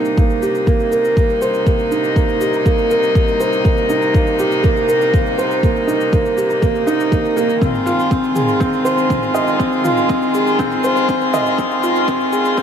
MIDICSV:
0, 0, Header, 1, 5, 480
1, 0, Start_track
1, 0, Key_signature, -3, "minor"
1, 0, Tempo, 495868
1, 1612, Time_signature, 4, 2, 24, 8
1, 12221, End_track
2, 0, Start_track
2, 0, Title_t, "Felt piano"
2, 0, Program_c, 0, 0
2, 0, Control_c, 0, 64, 127
2, 0, Note_on_c, 0, 58, 67
2, 0, Note_on_c, 0, 63, 64
2, 157, Note_off_c, 0, 63, 0
2, 167, Note_off_c, 0, 58, 0
2, 167, Note_on_c, 0, 58, 66
2, 397, Note_off_c, 0, 58, 0
2, 408, Note_on_c, 0, 67, 64
2, 638, Note_off_c, 0, 67, 0
2, 645, Note_on_c, 0, 58, 85
2, 876, Note_off_c, 0, 58, 0
2, 886, Note_on_c, 0, 70, 66
2, 1117, Note_off_c, 0, 70, 0
2, 1128, Note_on_c, 0, 58, 63
2, 1358, Note_off_c, 0, 58, 0
2, 1372, Note_on_c, 0, 72, 70
2, 1600, Note_off_c, 0, 72, 0
2, 1613, Note_on_c, 0, 58, 70
2, 1840, Note_off_c, 0, 58, 0
2, 1854, Note_on_c, 0, 63, 64
2, 2081, Note_off_c, 0, 63, 0
2, 2093, Note_on_c, 0, 58, 71
2, 2320, Note_off_c, 0, 58, 0
2, 2331, Note_on_c, 0, 67, 64
2, 2559, Note_off_c, 0, 67, 0
2, 2574, Note_on_c, 0, 58, 87
2, 2801, Note_off_c, 0, 58, 0
2, 2814, Note_on_c, 0, 70, 68
2, 3041, Note_off_c, 0, 70, 0
2, 3054, Note_on_c, 0, 58, 67
2, 3281, Note_off_c, 0, 58, 0
2, 3293, Note_on_c, 0, 72, 69
2, 3429, Note_off_c, 0, 72, 0
2, 3530, Note_on_c, 0, 58, 73
2, 3759, Note_off_c, 0, 58, 0
2, 3771, Note_on_c, 0, 63, 72
2, 3999, Note_off_c, 0, 63, 0
2, 4011, Note_on_c, 0, 58, 67
2, 4239, Note_off_c, 0, 58, 0
2, 4252, Note_on_c, 0, 67, 70
2, 4480, Note_off_c, 0, 67, 0
2, 4487, Note_on_c, 0, 58, 90
2, 4717, Note_off_c, 0, 58, 0
2, 4730, Note_on_c, 0, 70, 69
2, 4959, Note_off_c, 0, 70, 0
2, 4973, Note_on_c, 0, 58, 66
2, 5200, Note_off_c, 0, 58, 0
2, 5212, Note_on_c, 0, 72, 72
2, 5440, Note_off_c, 0, 72, 0
2, 5450, Note_on_c, 0, 58, 77
2, 5679, Note_off_c, 0, 58, 0
2, 5686, Note_on_c, 0, 63, 72
2, 5917, Note_off_c, 0, 63, 0
2, 5927, Note_on_c, 0, 58, 72
2, 6157, Note_off_c, 0, 58, 0
2, 6168, Note_on_c, 0, 67, 68
2, 6398, Note_off_c, 0, 67, 0
2, 6407, Note_on_c, 0, 58, 90
2, 6637, Note_off_c, 0, 58, 0
2, 6649, Note_on_c, 0, 63, 94
2, 6878, Note_off_c, 0, 63, 0
2, 6889, Note_on_c, 0, 58, 67
2, 7027, Note_off_c, 0, 58, 0
2, 7129, Note_on_c, 0, 58, 96
2, 7358, Note_off_c, 0, 58, 0
2, 7369, Note_on_c, 0, 60, 74
2, 7383, Control_c, 0, 64, 0
2, 7572, Control_c, 0, 64, 127
2, 7598, Note_off_c, 0, 60, 0
2, 7609, Note_on_c, 0, 65, 69
2, 7839, Note_off_c, 0, 65, 0
2, 7849, Note_on_c, 0, 60, 71
2, 8079, Note_off_c, 0, 60, 0
2, 8087, Note_on_c, 0, 68, 71
2, 8317, Note_off_c, 0, 68, 0
2, 8326, Note_on_c, 0, 60, 93
2, 8557, Note_off_c, 0, 60, 0
2, 8566, Note_on_c, 0, 72, 71
2, 8797, Note_off_c, 0, 72, 0
2, 8804, Note_on_c, 0, 60, 67
2, 9036, Note_off_c, 0, 60, 0
2, 9045, Note_on_c, 0, 75, 77
2, 9277, Note_off_c, 0, 75, 0
2, 9285, Note_on_c, 0, 60, 77
2, 9516, Note_off_c, 0, 60, 0
2, 9528, Note_on_c, 0, 65, 75
2, 9758, Note_off_c, 0, 65, 0
2, 9769, Note_on_c, 0, 60, 69
2, 9999, Note_off_c, 0, 60, 0
2, 10012, Note_on_c, 0, 68, 68
2, 10240, Note_off_c, 0, 68, 0
2, 10252, Note_on_c, 0, 60, 103
2, 10480, Note_off_c, 0, 60, 0
2, 10492, Note_on_c, 0, 72, 76
2, 10720, Note_off_c, 0, 72, 0
2, 10733, Note_on_c, 0, 60, 73
2, 10960, Note_off_c, 0, 60, 0
2, 10973, Note_on_c, 0, 75, 79
2, 11109, Note_off_c, 0, 75, 0
2, 11215, Note_on_c, 0, 60, 78
2, 11441, Note_off_c, 0, 60, 0
2, 11454, Note_on_c, 0, 65, 75
2, 11681, Note_off_c, 0, 65, 0
2, 11692, Note_on_c, 0, 60, 78
2, 11920, Note_off_c, 0, 60, 0
2, 11931, Note_on_c, 0, 68, 70
2, 12159, Note_off_c, 0, 68, 0
2, 12171, Note_on_c, 0, 60, 97
2, 12221, Note_off_c, 0, 60, 0
2, 12221, End_track
3, 0, Start_track
3, 0, Title_t, "String quartet"
3, 0, Program_c, 1, 48
3, 0, Note_on_c, 1, 48, 67
3, 0, Note_on_c, 1, 58, 60
3, 0, Note_on_c, 1, 63, 74
3, 7329, Note_off_c, 1, 48, 0
3, 7330, Note_off_c, 1, 58, 0
3, 7330, Note_off_c, 1, 63, 0
3, 7370, Note_on_c, 1, 56, 72
3, 7370, Note_on_c, 1, 65, 82
3, 7371, Note_on_c, 1, 51, 75
3, 12221, Note_off_c, 1, 51, 0
3, 12221, Note_off_c, 1, 56, 0
3, 12221, Note_off_c, 1, 65, 0
3, 12221, End_track
4, 0, Start_track
4, 0, Title_t, "Double bass section"
4, 0, Program_c, 2, 48
4, 0, Note_on_c, 2, 36, 82
4, 7347, Note_off_c, 2, 36, 0
4, 7373, Note_on_c, 2, 36, 84
4, 12221, Note_off_c, 2, 36, 0
4, 12221, End_track
5, 0, Start_track
5, 0, Title_t, "Drums"
5, 49, Note_on_c, 9, 82, 27
5, 146, Note_off_c, 9, 82, 0
5, 169, Note_on_c, 9, 82, 38
5, 170, Note_on_c, 9, 36, 89
5, 266, Note_off_c, 9, 36, 0
5, 266, Note_off_c, 9, 82, 0
5, 288, Note_on_c, 9, 82, 18
5, 385, Note_off_c, 9, 82, 0
5, 409, Note_on_c, 9, 82, 66
5, 506, Note_off_c, 9, 82, 0
5, 530, Note_on_c, 9, 82, 28
5, 627, Note_off_c, 9, 82, 0
5, 650, Note_on_c, 9, 36, 88
5, 650, Note_on_c, 9, 82, 37
5, 747, Note_off_c, 9, 36, 0
5, 747, Note_off_c, 9, 82, 0
5, 771, Note_on_c, 9, 82, 18
5, 868, Note_off_c, 9, 82, 0
5, 892, Note_on_c, 9, 82, 62
5, 989, Note_off_c, 9, 82, 0
5, 1012, Note_on_c, 9, 82, 29
5, 1109, Note_off_c, 9, 82, 0
5, 1131, Note_on_c, 9, 36, 90
5, 1133, Note_on_c, 9, 82, 37
5, 1228, Note_off_c, 9, 36, 0
5, 1230, Note_off_c, 9, 82, 0
5, 1253, Note_on_c, 9, 82, 16
5, 1349, Note_off_c, 9, 82, 0
5, 1371, Note_on_c, 9, 82, 69
5, 1468, Note_off_c, 9, 82, 0
5, 1492, Note_on_c, 9, 82, 28
5, 1589, Note_off_c, 9, 82, 0
5, 1612, Note_on_c, 9, 36, 97
5, 1613, Note_on_c, 9, 82, 37
5, 1709, Note_off_c, 9, 36, 0
5, 1710, Note_off_c, 9, 82, 0
5, 1733, Note_on_c, 9, 82, 18
5, 1830, Note_off_c, 9, 82, 0
5, 1854, Note_on_c, 9, 82, 62
5, 1951, Note_off_c, 9, 82, 0
5, 1975, Note_on_c, 9, 82, 29
5, 2072, Note_off_c, 9, 82, 0
5, 2093, Note_on_c, 9, 36, 94
5, 2096, Note_on_c, 9, 82, 38
5, 2189, Note_off_c, 9, 36, 0
5, 2192, Note_off_c, 9, 82, 0
5, 2215, Note_on_c, 9, 82, 19
5, 2312, Note_off_c, 9, 82, 0
5, 2331, Note_on_c, 9, 82, 66
5, 2428, Note_off_c, 9, 82, 0
5, 2452, Note_on_c, 9, 82, 28
5, 2549, Note_off_c, 9, 82, 0
5, 2572, Note_on_c, 9, 82, 39
5, 2573, Note_on_c, 9, 36, 92
5, 2669, Note_off_c, 9, 82, 0
5, 2670, Note_off_c, 9, 36, 0
5, 2692, Note_on_c, 9, 82, 20
5, 2789, Note_off_c, 9, 82, 0
5, 2814, Note_on_c, 9, 82, 67
5, 2911, Note_off_c, 9, 82, 0
5, 2934, Note_on_c, 9, 82, 31
5, 3031, Note_off_c, 9, 82, 0
5, 3053, Note_on_c, 9, 36, 99
5, 3053, Note_on_c, 9, 82, 38
5, 3150, Note_off_c, 9, 36, 0
5, 3150, Note_off_c, 9, 82, 0
5, 3174, Note_on_c, 9, 82, 18
5, 3271, Note_off_c, 9, 82, 0
5, 3293, Note_on_c, 9, 82, 73
5, 3390, Note_off_c, 9, 82, 0
5, 3414, Note_on_c, 9, 82, 30
5, 3511, Note_off_c, 9, 82, 0
5, 3532, Note_on_c, 9, 82, 37
5, 3534, Note_on_c, 9, 36, 98
5, 3629, Note_off_c, 9, 82, 0
5, 3631, Note_off_c, 9, 36, 0
5, 3652, Note_on_c, 9, 82, 18
5, 3749, Note_off_c, 9, 82, 0
5, 3770, Note_on_c, 9, 82, 65
5, 3866, Note_off_c, 9, 82, 0
5, 3891, Note_on_c, 9, 82, 30
5, 3988, Note_off_c, 9, 82, 0
5, 4011, Note_on_c, 9, 82, 39
5, 4013, Note_on_c, 9, 36, 100
5, 4107, Note_off_c, 9, 82, 0
5, 4110, Note_off_c, 9, 36, 0
5, 4131, Note_on_c, 9, 82, 20
5, 4228, Note_off_c, 9, 82, 0
5, 4249, Note_on_c, 9, 82, 70
5, 4346, Note_off_c, 9, 82, 0
5, 4370, Note_on_c, 9, 82, 29
5, 4467, Note_off_c, 9, 82, 0
5, 4489, Note_on_c, 9, 82, 40
5, 4493, Note_on_c, 9, 36, 102
5, 4586, Note_off_c, 9, 82, 0
5, 4590, Note_off_c, 9, 36, 0
5, 4612, Note_on_c, 9, 82, 21
5, 4709, Note_off_c, 9, 82, 0
5, 4731, Note_on_c, 9, 82, 77
5, 4828, Note_off_c, 9, 82, 0
5, 4853, Note_on_c, 9, 82, 30
5, 4949, Note_off_c, 9, 82, 0
5, 4972, Note_on_c, 9, 36, 99
5, 4973, Note_on_c, 9, 82, 42
5, 5069, Note_off_c, 9, 36, 0
5, 5070, Note_off_c, 9, 82, 0
5, 5093, Note_on_c, 9, 82, 19
5, 5190, Note_off_c, 9, 82, 0
5, 5213, Note_on_c, 9, 82, 69
5, 5310, Note_off_c, 9, 82, 0
5, 5332, Note_on_c, 9, 82, 29
5, 5429, Note_off_c, 9, 82, 0
5, 5452, Note_on_c, 9, 36, 97
5, 5455, Note_on_c, 9, 82, 40
5, 5548, Note_off_c, 9, 36, 0
5, 5551, Note_off_c, 9, 82, 0
5, 5575, Note_on_c, 9, 82, 17
5, 5672, Note_off_c, 9, 82, 0
5, 5696, Note_on_c, 9, 82, 67
5, 5793, Note_off_c, 9, 82, 0
5, 5814, Note_on_c, 9, 82, 29
5, 5911, Note_off_c, 9, 82, 0
5, 5932, Note_on_c, 9, 36, 105
5, 5933, Note_on_c, 9, 82, 42
5, 6029, Note_off_c, 9, 36, 0
5, 6029, Note_off_c, 9, 82, 0
5, 6054, Note_on_c, 9, 82, 21
5, 6151, Note_off_c, 9, 82, 0
5, 6173, Note_on_c, 9, 82, 69
5, 6270, Note_off_c, 9, 82, 0
5, 6294, Note_on_c, 9, 82, 30
5, 6390, Note_off_c, 9, 82, 0
5, 6413, Note_on_c, 9, 36, 100
5, 6413, Note_on_c, 9, 82, 39
5, 6509, Note_off_c, 9, 36, 0
5, 6510, Note_off_c, 9, 82, 0
5, 6535, Note_on_c, 9, 82, 20
5, 6632, Note_off_c, 9, 82, 0
5, 6654, Note_on_c, 9, 82, 69
5, 6751, Note_off_c, 9, 82, 0
5, 6777, Note_on_c, 9, 82, 31
5, 6874, Note_off_c, 9, 82, 0
5, 6893, Note_on_c, 9, 36, 98
5, 6896, Note_on_c, 9, 82, 41
5, 6990, Note_off_c, 9, 36, 0
5, 6993, Note_off_c, 9, 82, 0
5, 7017, Note_on_c, 9, 82, 19
5, 7114, Note_off_c, 9, 82, 0
5, 7136, Note_on_c, 9, 82, 73
5, 7233, Note_off_c, 9, 82, 0
5, 7256, Note_on_c, 9, 82, 27
5, 7353, Note_off_c, 9, 82, 0
5, 7372, Note_on_c, 9, 36, 99
5, 7376, Note_on_c, 9, 45, 58
5, 7376, Note_on_c, 9, 82, 39
5, 7469, Note_off_c, 9, 36, 0
5, 7473, Note_off_c, 9, 45, 0
5, 7473, Note_off_c, 9, 82, 0
5, 7497, Note_on_c, 9, 82, 19
5, 7594, Note_off_c, 9, 82, 0
5, 7614, Note_on_c, 9, 82, 66
5, 7711, Note_off_c, 9, 82, 0
5, 7737, Note_on_c, 9, 82, 28
5, 7834, Note_off_c, 9, 82, 0
5, 7851, Note_on_c, 9, 36, 100
5, 7853, Note_on_c, 9, 82, 37
5, 7948, Note_off_c, 9, 36, 0
5, 7950, Note_off_c, 9, 82, 0
5, 7971, Note_on_c, 9, 82, 20
5, 8068, Note_off_c, 9, 82, 0
5, 8089, Note_on_c, 9, 45, 57
5, 8089, Note_on_c, 9, 82, 68
5, 8186, Note_off_c, 9, 45, 0
5, 8186, Note_off_c, 9, 82, 0
5, 8210, Note_on_c, 9, 82, 31
5, 8307, Note_off_c, 9, 82, 0
5, 8331, Note_on_c, 9, 36, 98
5, 8332, Note_on_c, 9, 82, 41
5, 8428, Note_off_c, 9, 36, 0
5, 8429, Note_off_c, 9, 82, 0
5, 8450, Note_on_c, 9, 82, 19
5, 8547, Note_off_c, 9, 82, 0
5, 8570, Note_on_c, 9, 82, 74
5, 8667, Note_off_c, 9, 82, 0
5, 8692, Note_on_c, 9, 82, 33
5, 8789, Note_off_c, 9, 82, 0
5, 8811, Note_on_c, 9, 36, 92
5, 8811, Note_on_c, 9, 45, 57
5, 8811, Note_on_c, 9, 82, 41
5, 8908, Note_off_c, 9, 36, 0
5, 8908, Note_off_c, 9, 45, 0
5, 8908, Note_off_c, 9, 82, 0
5, 8931, Note_on_c, 9, 82, 19
5, 9028, Note_off_c, 9, 82, 0
5, 9049, Note_on_c, 9, 82, 73
5, 9145, Note_off_c, 9, 82, 0
5, 9170, Note_on_c, 9, 82, 28
5, 9267, Note_off_c, 9, 82, 0
5, 9291, Note_on_c, 9, 36, 97
5, 9291, Note_on_c, 9, 82, 38
5, 9387, Note_off_c, 9, 82, 0
5, 9388, Note_off_c, 9, 36, 0
5, 9411, Note_on_c, 9, 82, 17
5, 9507, Note_off_c, 9, 82, 0
5, 9532, Note_on_c, 9, 45, 56
5, 9532, Note_on_c, 9, 82, 67
5, 9629, Note_off_c, 9, 45, 0
5, 9629, Note_off_c, 9, 82, 0
5, 9651, Note_on_c, 9, 82, 27
5, 9748, Note_off_c, 9, 82, 0
5, 9770, Note_on_c, 9, 82, 40
5, 9772, Note_on_c, 9, 36, 103
5, 9867, Note_off_c, 9, 82, 0
5, 9869, Note_off_c, 9, 36, 0
5, 9892, Note_on_c, 9, 82, 19
5, 9989, Note_off_c, 9, 82, 0
5, 10012, Note_on_c, 9, 82, 69
5, 10109, Note_off_c, 9, 82, 0
5, 10132, Note_on_c, 9, 82, 27
5, 10229, Note_off_c, 9, 82, 0
5, 10252, Note_on_c, 9, 36, 98
5, 10253, Note_on_c, 9, 45, 59
5, 10253, Note_on_c, 9, 82, 38
5, 10349, Note_off_c, 9, 36, 0
5, 10350, Note_off_c, 9, 45, 0
5, 10350, Note_off_c, 9, 82, 0
5, 10374, Note_on_c, 9, 82, 20
5, 10471, Note_off_c, 9, 82, 0
5, 10490, Note_on_c, 9, 82, 72
5, 10587, Note_off_c, 9, 82, 0
5, 10612, Note_on_c, 9, 82, 28
5, 10708, Note_off_c, 9, 82, 0
5, 10733, Note_on_c, 9, 36, 96
5, 10733, Note_on_c, 9, 82, 38
5, 10830, Note_off_c, 9, 36, 0
5, 10830, Note_off_c, 9, 82, 0
5, 10851, Note_on_c, 9, 82, 18
5, 10948, Note_off_c, 9, 82, 0
5, 10974, Note_on_c, 9, 45, 61
5, 10974, Note_on_c, 9, 82, 72
5, 11071, Note_off_c, 9, 45, 0
5, 11071, Note_off_c, 9, 82, 0
5, 11094, Note_on_c, 9, 82, 27
5, 11191, Note_off_c, 9, 82, 0
5, 11213, Note_on_c, 9, 36, 92
5, 11215, Note_on_c, 9, 82, 37
5, 11310, Note_off_c, 9, 36, 0
5, 11311, Note_off_c, 9, 82, 0
5, 11334, Note_on_c, 9, 82, 17
5, 11431, Note_off_c, 9, 82, 0
5, 11454, Note_on_c, 9, 82, 69
5, 11551, Note_off_c, 9, 82, 0
5, 11573, Note_on_c, 9, 82, 28
5, 11669, Note_off_c, 9, 82, 0
5, 11693, Note_on_c, 9, 36, 104
5, 11693, Note_on_c, 9, 45, 67
5, 11693, Note_on_c, 9, 82, 39
5, 11790, Note_off_c, 9, 36, 0
5, 11790, Note_off_c, 9, 45, 0
5, 11790, Note_off_c, 9, 82, 0
5, 11812, Note_on_c, 9, 82, 19
5, 11909, Note_off_c, 9, 82, 0
5, 11932, Note_on_c, 9, 82, 66
5, 12028, Note_off_c, 9, 82, 0
5, 12051, Note_on_c, 9, 82, 29
5, 12148, Note_off_c, 9, 82, 0
5, 12172, Note_on_c, 9, 82, 37
5, 12173, Note_on_c, 9, 36, 99
5, 12221, Note_off_c, 9, 36, 0
5, 12221, Note_off_c, 9, 82, 0
5, 12221, End_track
0, 0, End_of_file